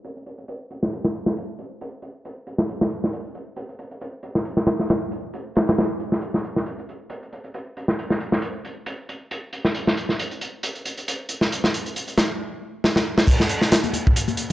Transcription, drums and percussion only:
0.04 closed hi-hat
0.17 closed hi-hat
0.26 closed hi-hat
0.38 closed hi-hat
0.48 closed hi-hat
0.70 closed hi-hat
0.83 snare
0.93 closed hi-hat
1.04 snare
1.15 closed hi-hat
1.26 snare
1.37 closed hi-hat
1.59 closed hi-hat
1.81 closed hi-hat
2.02 closed hi-hat
2.25 closed hi-hat
2.47 closed hi-hat
2.58 snare
2.69 closed hi-hat
2.81 snare
2.90 closed hi-hat
3.04 snare
3.13 closed hi-hat
3.25 closed hi-hat
3.35 closed hi-hat
3.56 closed hi-hat
3.69 closed hi-hat
3.79 closed hi-hat
3.91 closed hi-hat
4.01 closed hi-hat
4.23 closed hi-hat
4.35 snare
4.45 closed hi-hat
4.57 snare
4.67 snare, closed hi-hat
4.79 snare
4.89 snare, closed hi-hat
5.12 closed hi-hat
5.34 closed hi-hat
5.55 snare, closed hi-hat
5.67 snare, closed hi-hat
5.78 snare, closed hi-hat
6.00 closed hi-hat
6.12 snare
6.21 closed hi-hat
6.34 snare
6.44 closed hi-hat
6.56 snare
6.66 closed hi-hat
6.79 closed hi-hat
6.89 closed hi-hat
7.10 closed hi-hat
7.23 closed hi-hat
7.33 closed hi-hat
7.44 closed hi-hat
7.54 closed hi-hat
7.77 closed hi-hat
7.88 snare
7.99 closed hi-hat
8.10 snare
8.20 closed hi-hat
8.32 snare
8.42 closed hi-hat
8.65 closed hi-hat
8.86 closed hi-hat
9.09 closed hi-hat
9.31 closed hi-hat
9.53 closed hi-hat
9.65 snare
9.74 closed hi-hat
9.87 snare
9.97 closed hi-hat
10.09 snare
10.19 closed hi-hat
10.31 closed hi-hat
10.41 closed hi-hat
10.63 closed hi-hat
10.75 closed hi-hat
10.85 closed hi-hat
10.97 closed hi-hat
11.08 closed hi-hat
11.29 closed hi-hat
11.41 snare
11.52 closed hi-hat
11.64 snare
11.74 closed hi-hat
11.86 closed hi-hat
11.96 closed hi-hat
12.08 closed hi-hat
12.18 snare, closed hi-hat
12.84 snare
12.96 snare
13.18 snare
13.27 kick, closed hi-hat, crash
13.40 snare
13.49 closed hi-hat
13.61 snare
13.72 snare, closed hi-hat
13.84 closed hi-hat, high conga
13.93 closed hi-hat, high conga
14.07 kick
14.16 closed hi-hat
14.28 closed hi-hat, high conga
14.37 closed hi-hat

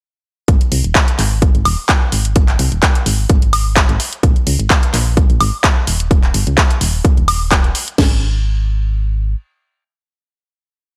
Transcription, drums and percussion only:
0.48 kick, closed hi-hat
0.61 closed hi-hat
0.72 open hi-hat
0.84 closed hi-hat
0.95 kick, clap, closed hi-hat
1.08 closed hi-hat
1.19 clap, open hi-hat
1.42 kick, closed hi-hat
1.55 closed hi-hat
1.65 open hi-hat, high woodblock
1.89 kick, clap, closed hi-hat, high woodblock
2.12 open hi-hat
2.25 closed hi-hat
2.36 kick, closed hi-hat
2.48 clap, closed hi-hat
2.59 open hi-hat
2.72 closed hi-hat
2.83 kick, clap, closed hi-hat
2.95 closed hi-hat
3.06 open hi-hat
3.30 kick, closed hi-hat
3.42 closed hi-hat
3.53 open hi-hat, high woodblock
3.76 kick, clap, closed hi-hat, high woodblock
3.89 closed hi-hat
4.00 open hi-hat
4.13 closed hi-hat
4.23 kick, closed hi-hat
4.36 closed hi-hat
4.47 open hi-hat
4.60 closed hi-hat
4.70 kick, clap, closed hi-hat
4.83 closed hi-hat
4.94 clap, open hi-hat
5.17 kick, closed hi-hat
5.30 closed hi-hat
5.41 open hi-hat, high woodblock
5.64 kick, clap, closed hi-hat, high woodblock
5.87 open hi-hat
6.00 closed hi-hat
6.11 kick, closed hi-hat
6.23 clap, closed hi-hat
6.34 open hi-hat
6.47 closed hi-hat
6.58 kick, clap, closed hi-hat
6.70 closed hi-hat
6.81 open hi-hat
7.05 kick, closed hi-hat
7.17 closed hi-hat
7.28 open hi-hat, high woodblock
7.51 kick, clap, closed hi-hat, high woodblock
7.64 closed hi-hat
7.75 open hi-hat
7.88 closed hi-hat
7.98 kick, snare, crash

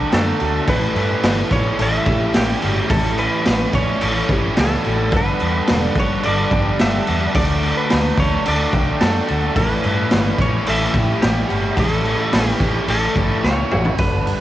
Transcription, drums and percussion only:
0.12 snare, crash
0.40 crash
0.68 kick, crash
0.96 crash
1.23 snare, crash
1.51 kick, crash
1.79 crash
2.06 kick, crash
2.34 snare, crash
2.62 crash
2.90 kick, crash
3.18 crash
3.45 snare, crash
3.73 kick, crash
4.01 crash
4.29 kick, crash
4.57 snare, crash
4.84 crash
5.12 kick, crash
5.40 crash
5.67 snare, crash
5.95 kick, crash
6.23 crash
6.51 kick, crash
6.79 snare, crash
7.07 crash
7.35 kick, crash
7.63 crash
7.90 snare, crash
8.17 kick, crash
8.45 crash
8.73 kick, crash
9.01 snare, crash
9.28 crash
9.56 kick, crash
9.84 crash
10.11 snare, crash
10.38 kick, crash
10.66 crash
10.94 kick, crash
11.22 snare, crash
11.50 crash
11.77 kick, crash
12.05 crash
12.33 snare, crash
12.60 kick, crash
12.88 crash
13.16 kick, crash
13.44 snare
13.71 mid tom
13.85 floor tom
13.98 kick, open hi-hat
14.27 open hi-hat

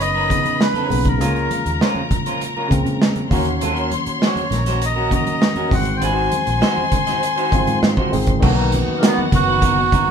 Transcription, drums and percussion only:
0.01 closed hi-hat
0.15 muted conga
0.30 kick, closed hi-hat, high conga
0.45 closed hi-hat, high conga
0.61 snare
0.74 closed hi-hat, high conga
0.90 open hi-hat, low conga
1.05 kick, closed hi-hat
1.21 closed hi-hat, low conga
1.35 closed hi-hat, muted conga
1.51 closed hi-hat, high conga
1.66 closed hi-hat
1.81 snare
1.95 high conga
2.11 kick, closed hi-hat, low conga
2.26 closed hi-hat, high conga
2.41 closed hi-hat, muted conga
2.57 muted conga
2.71 kick, closed hi-hat, high conga
2.86 closed hi-hat, high conga
3.02 snare
3.16 closed hi-hat, high conga
3.31 kick, open hi-hat, low conga
3.45 closed hi-hat
3.61 closed hi-hat, low conga
3.75 closed hi-hat, muted conga
3.91 closed hi-hat, high conga
4.06 closed hi-hat
4.20 snare, muted conga
4.36 closed hi-hat, high conga
4.51 snare, closed hi-hat, low conga
4.66 snare, closed hi-hat, high conga
4.82 closed hi-hat
4.96 muted conga
5.11 kick, closed hi-hat, high conga
5.26 closed hi-hat, high conga
5.42 snare
5.56 closed hi-hat, muted conga, high conga
5.71 kick, open hi-hat, low conga
5.85 closed hi-hat
6.02 closed hi-hat, low conga
6.16 muted conga
6.32 closed hi-hat, high conga
6.47 closed hi-hat
6.62 snare, muted conga
6.77 high conga
6.92 kick, closed hi-hat, low conga
7.07 snare, closed hi-hat, high conga
7.23 closed hi-hat
7.38 closed hi-hat
7.52 kick, closed hi-hat, high conga
7.67 closed hi-hat, high conga
7.83 snare
7.97 kick, muted conga, high conga
8.13 open hi-hat, low conga
8.27 kick, closed hi-hat
8.42 kick, crash, low conga
8.72 closed hi-hat, high conga
9.02 snare, closed hi-hat, muted conga
9.18 high conga
9.32 kick, snare, closed hi-hat, low conga
9.48 high conga
9.62 kick, closed hi-hat
9.78 muted conga
9.92 kick, closed hi-hat, high conga
10.08 high conga

